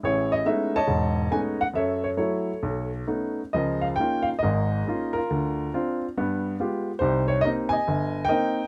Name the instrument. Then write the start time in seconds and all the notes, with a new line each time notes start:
upright piano
0.03 A1 E4 G#4 C#5
0.32 D#5
0.46 G#3 A3 B3 C#4 D#4 E5
0.76 C#5 D#5 A5
0.87 E1 G#2
1.31 G#3 A3 B3 C#4 D#4 G#5
1.61 F#5
1.74 F#2 A4 C#5 E5
2.04 C#5
2.17 F#3 A3 E4 A4 C#5
2.63 B1
3.07 A3 B3 C#4 D#4
3.53 C#2 F3 G#4 A#4 D#5
3.81 F5
3.96 A#3 G5
4.00 C#4 D#4 F4
4.22 F5
4.39 G#2 D#5
4.43 G#1 G#4 A#4
4.87 A#3 C#4 D#4 F4
5.13 A#4
5.17 F4
5.30 D2
5.74 C4 D4 F4
6.17 G2 B3
6.60 G#3 B3 F4 G4
6.99 C2 D#4 G4 C5
7.28 C#5
7.41 A#3 D#5
7.45 C4 D#4
7.69 D#5 G#5
7.87 G1
8.25 A#4 G5
8.29 A#3 C4 D#4 D#5